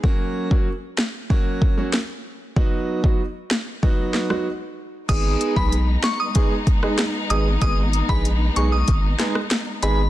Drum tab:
CC |----------------|----------------|x---------------|----------------|
HH |----------------|----------------|x-x-x-x-x-x-x-x-|x-x-x-x-x-x-x-x-|
SD |------o-----o---|------o---or----|------o----ro---|----------oro---|
BD |o--o----o-o-----|o--o----o-------|o--o----o-o-----|o--o----o-------|